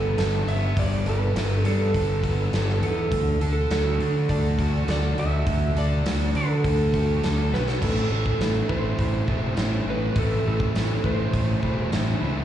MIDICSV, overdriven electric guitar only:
0, 0, Header, 1, 2, 480
1, 0, Start_track
1, 0, Tempo, 587084
1, 629, Time_signature, 4, 2, 24, 8
1, 10174, End_track
2, 0, Start_track
2, 0, Title_t, "Overdriven electric guitar"
2, 0, Program_c, 0, 29
2, 0, Note_on_c, 0, 59, 57
2, 0, Note_on_c, 0, 62, 63
2, 0, Note_on_c, 0, 69, 61
2, 145, Note_off_c, 0, 69, 0
2, 149, Note_on_c, 0, 69, 59
2, 377, Note_off_c, 0, 59, 0
2, 387, Note_on_c, 0, 59, 61
2, 636, Note_on_c, 0, 55, 66
2, 871, Note_off_c, 0, 69, 0
2, 875, Note_on_c, 0, 69, 63
2, 1111, Note_off_c, 0, 59, 0
2, 1120, Note_on_c, 0, 59, 59
2, 1352, Note_off_c, 0, 62, 0
2, 1355, Note_on_c, 0, 62, 60
2, 1599, Note_off_c, 0, 69, 0
2, 1603, Note_on_c, 0, 69, 71
2, 1833, Note_off_c, 0, 59, 0
2, 1836, Note_off_c, 0, 55, 0
2, 1843, Note_on_c, 0, 59, 63
2, 2077, Note_off_c, 0, 69, 0
2, 2080, Note_on_c, 0, 69, 62
2, 2309, Note_off_c, 0, 59, 0
2, 2319, Note_on_c, 0, 59, 60
2, 2557, Note_off_c, 0, 59, 0
2, 2563, Note_on_c, 0, 50, 62
2, 2789, Note_off_c, 0, 69, 0
2, 2792, Note_on_c, 0, 69, 61
2, 3040, Note_on_c, 0, 66, 66
2, 3272, Note_off_c, 0, 62, 0
2, 3275, Note_on_c, 0, 62, 58
2, 3519, Note_off_c, 0, 69, 0
2, 3522, Note_on_c, 0, 69, 65
2, 3744, Note_off_c, 0, 66, 0
2, 3754, Note_on_c, 0, 66, 61
2, 3761, Note_off_c, 0, 50, 0
2, 3980, Note_off_c, 0, 69, 0
2, 3989, Note_on_c, 0, 69, 64
2, 4222, Note_off_c, 0, 66, 0
2, 4232, Note_on_c, 0, 66, 53
2, 4470, Note_on_c, 0, 50, 66
2, 4477, Note_off_c, 0, 62, 0
2, 4701, Note_off_c, 0, 69, 0
2, 4711, Note_on_c, 0, 69, 63
2, 4942, Note_off_c, 0, 66, 0
2, 4952, Note_on_c, 0, 66, 63
2, 5200, Note_on_c, 0, 62, 61
2, 5423, Note_off_c, 0, 69, 0
2, 5433, Note_on_c, 0, 69, 66
2, 5671, Note_off_c, 0, 66, 0
2, 5673, Note_off_c, 0, 50, 0
2, 5681, Note_on_c, 0, 66, 59
2, 5907, Note_off_c, 0, 69, 0
2, 5917, Note_on_c, 0, 69, 68
2, 6149, Note_off_c, 0, 66, 0
2, 6159, Note_on_c, 0, 66, 50
2, 6384, Note_on_c, 0, 45, 87
2, 6385, Note_off_c, 0, 62, 0
2, 6387, Note_on_c, 0, 52, 91
2, 6388, Note_on_c, 0, 57, 81
2, 6390, Note_off_c, 0, 66, 0
2, 6393, Note_off_c, 0, 69, 0
2, 6393, Note_on_c, 0, 60, 89
2, 6396, Note_on_c, 0, 64, 78
2, 6621, Note_off_c, 0, 45, 0
2, 6623, Note_off_c, 0, 52, 0
2, 6625, Note_on_c, 0, 45, 70
2, 6626, Note_off_c, 0, 57, 0
2, 6626, Note_on_c, 0, 52, 75
2, 6629, Note_off_c, 0, 60, 0
2, 6630, Note_on_c, 0, 57, 85
2, 6631, Note_off_c, 0, 64, 0
2, 6633, Note_on_c, 0, 60, 70
2, 6634, Note_on_c, 0, 64, 74
2, 6859, Note_off_c, 0, 45, 0
2, 6861, Note_off_c, 0, 52, 0
2, 6862, Note_on_c, 0, 45, 77
2, 6863, Note_off_c, 0, 57, 0
2, 6864, Note_on_c, 0, 52, 78
2, 6866, Note_on_c, 0, 57, 87
2, 6869, Note_off_c, 0, 64, 0
2, 6871, Note_off_c, 0, 60, 0
2, 6872, Note_on_c, 0, 64, 99
2, 6874, Note_on_c, 0, 60, 84
2, 7099, Note_off_c, 0, 45, 0
2, 7099, Note_off_c, 0, 52, 0
2, 7102, Note_on_c, 0, 45, 89
2, 7102, Note_on_c, 0, 52, 83
2, 7104, Note_off_c, 0, 57, 0
2, 7104, Note_off_c, 0, 64, 0
2, 7105, Note_off_c, 0, 60, 0
2, 7107, Note_on_c, 0, 57, 86
2, 7108, Note_on_c, 0, 60, 72
2, 7108, Note_on_c, 0, 64, 88
2, 7329, Note_off_c, 0, 45, 0
2, 7336, Note_off_c, 0, 52, 0
2, 7338, Note_off_c, 0, 60, 0
2, 7339, Note_on_c, 0, 45, 67
2, 7341, Note_off_c, 0, 64, 0
2, 7344, Note_off_c, 0, 57, 0
2, 7346, Note_on_c, 0, 52, 73
2, 7347, Note_on_c, 0, 57, 72
2, 7348, Note_on_c, 0, 60, 74
2, 7351, Note_on_c, 0, 64, 90
2, 7580, Note_off_c, 0, 45, 0
2, 7580, Note_off_c, 0, 52, 0
2, 7583, Note_off_c, 0, 60, 0
2, 7586, Note_off_c, 0, 64, 0
2, 7588, Note_off_c, 0, 57, 0
2, 7589, Note_on_c, 0, 52, 74
2, 7590, Note_on_c, 0, 45, 71
2, 7591, Note_on_c, 0, 57, 80
2, 7592, Note_on_c, 0, 60, 81
2, 7596, Note_on_c, 0, 64, 85
2, 7820, Note_off_c, 0, 45, 0
2, 7821, Note_off_c, 0, 52, 0
2, 7829, Note_off_c, 0, 60, 0
2, 7829, Note_off_c, 0, 64, 0
2, 7829, Note_on_c, 0, 45, 76
2, 7831, Note_off_c, 0, 57, 0
2, 7831, Note_on_c, 0, 52, 85
2, 7834, Note_on_c, 0, 57, 89
2, 7839, Note_on_c, 0, 60, 82
2, 7839, Note_on_c, 0, 64, 93
2, 8062, Note_off_c, 0, 45, 0
2, 8067, Note_off_c, 0, 52, 0
2, 8070, Note_off_c, 0, 64, 0
2, 8071, Note_off_c, 0, 60, 0
2, 8071, Note_on_c, 0, 45, 68
2, 8072, Note_off_c, 0, 57, 0
2, 8076, Note_on_c, 0, 57, 82
2, 8077, Note_on_c, 0, 52, 78
2, 8080, Note_on_c, 0, 64, 82
2, 8081, Note_on_c, 0, 60, 80
2, 8309, Note_off_c, 0, 45, 0
2, 8313, Note_off_c, 0, 52, 0
2, 8317, Note_off_c, 0, 60, 0
2, 8319, Note_on_c, 0, 45, 81
2, 8320, Note_off_c, 0, 64, 0
2, 8322, Note_off_c, 0, 57, 0
2, 8323, Note_on_c, 0, 52, 91
2, 8325, Note_on_c, 0, 57, 86
2, 8327, Note_on_c, 0, 60, 85
2, 8329, Note_on_c, 0, 64, 87
2, 8547, Note_off_c, 0, 45, 0
2, 8553, Note_off_c, 0, 52, 0
2, 8556, Note_off_c, 0, 60, 0
2, 8557, Note_off_c, 0, 64, 0
2, 8557, Note_on_c, 0, 45, 77
2, 8561, Note_off_c, 0, 57, 0
2, 8563, Note_on_c, 0, 52, 70
2, 8565, Note_on_c, 0, 57, 77
2, 8565, Note_on_c, 0, 60, 71
2, 8567, Note_on_c, 0, 64, 80
2, 8781, Note_off_c, 0, 45, 0
2, 8789, Note_off_c, 0, 52, 0
2, 8790, Note_off_c, 0, 60, 0
2, 8791, Note_on_c, 0, 45, 76
2, 8796, Note_off_c, 0, 57, 0
2, 8796, Note_off_c, 0, 64, 0
2, 8799, Note_on_c, 0, 52, 86
2, 8799, Note_on_c, 0, 57, 79
2, 8800, Note_on_c, 0, 60, 97
2, 8806, Note_on_c, 0, 64, 96
2, 9026, Note_off_c, 0, 45, 0
2, 9030, Note_off_c, 0, 52, 0
2, 9033, Note_off_c, 0, 64, 0
2, 9034, Note_off_c, 0, 60, 0
2, 9036, Note_off_c, 0, 57, 0
2, 9036, Note_on_c, 0, 45, 90
2, 9039, Note_on_c, 0, 57, 91
2, 9040, Note_on_c, 0, 52, 83
2, 9042, Note_on_c, 0, 64, 99
2, 9043, Note_on_c, 0, 60, 86
2, 9254, Note_off_c, 0, 45, 0
2, 9257, Note_off_c, 0, 52, 0
2, 9260, Note_off_c, 0, 60, 0
2, 9264, Note_off_c, 0, 64, 0
2, 9264, Note_on_c, 0, 45, 74
2, 9266, Note_on_c, 0, 52, 79
2, 9268, Note_off_c, 0, 57, 0
2, 9270, Note_on_c, 0, 60, 88
2, 9272, Note_on_c, 0, 57, 81
2, 9273, Note_on_c, 0, 64, 79
2, 9498, Note_off_c, 0, 45, 0
2, 9499, Note_off_c, 0, 52, 0
2, 9505, Note_off_c, 0, 60, 0
2, 9506, Note_off_c, 0, 64, 0
2, 9507, Note_on_c, 0, 45, 74
2, 9508, Note_off_c, 0, 57, 0
2, 9509, Note_on_c, 0, 52, 81
2, 9511, Note_on_c, 0, 57, 82
2, 9515, Note_on_c, 0, 60, 85
2, 9516, Note_on_c, 0, 64, 87
2, 9731, Note_off_c, 0, 45, 0
2, 9733, Note_off_c, 0, 52, 0
2, 9738, Note_off_c, 0, 60, 0
2, 9741, Note_on_c, 0, 45, 87
2, 9742, Note_on_c, 0, 52, 84
2, 9743, Note_off_c, 0, 64, 0
2, 9745, Note_off_c, 0, 57, 0
2, 9748, Note_on_c, 0, 57, 86
2, 9748, Note_on_c, 0, 60, 92
2, 9753, Note_on_c, 0, 64, 87
2, 9969, Note_off_c, 0, 45, 0
2, 9972, Note_off_c, 0, 52, 0
2, 9978, Note_off_c, 0, 60, 0
2, 9978, Note_on_c, 0, 45, 77
2, 9979, Note_off_c, 0, 64, 0
2, 9980, Note_off_c, 0, 57, 0
2, 9982, Note_on_c, 0, 52, 71
2, 9984, Note_on_c, 0, 57, 82
2, 9988, Note_on_c, 0, 60, 91
2, 9989, Note_on_c, 0, 64, 80
2, 10174, Note_off_c, 0, 45, 0
2, 10174, Note_off_c, 0, 52, 0
2, 10174, Note_off_c, 0, 57, 0
2, 10174, Note_off_c, 0, 60, 0
2, 10174, Note_off_c, 0, 64, 0
2, 10174, End_track
0, 0, End_of_file